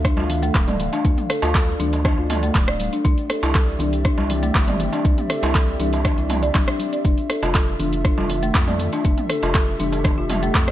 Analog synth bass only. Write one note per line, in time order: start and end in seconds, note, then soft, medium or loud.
0.00 0.14 D2 medium
0.18 0.51 D2 medium
0.55 0.89 D1 loud
1.05 1.15 D2 loud
1.43 1.76 D2 loud
1.80 2.14 D2 medium
2.18 2.51 D2 loud
2.55 2.89 D1 loud
3.05 3.15 C2 loud
3.43 3.76 C2 loud
3.80 4.14 C2 medium
4.18 4.51 C2 loud
4.55 4.89 G1 loud
5.05 5.15 C2 loud
5.43 5.76 C2 loud
5.80 6.14 C2 medium
6.18 6.51 C2 loud
6.55 6.65 G1 medium
7.05 7.15 F1 loud
7.43 7.76 F1 loud
7.80 8.14 F1 medium
8.18 8.51 F1 loud
8.55 8.89 F2 loud
9.05 9.15 F1 loud
9.43 9.76 F1 loud
9.80 10.14 F1 medium
10.18 10.51 F1 loud
10.55 10.72 F2 loud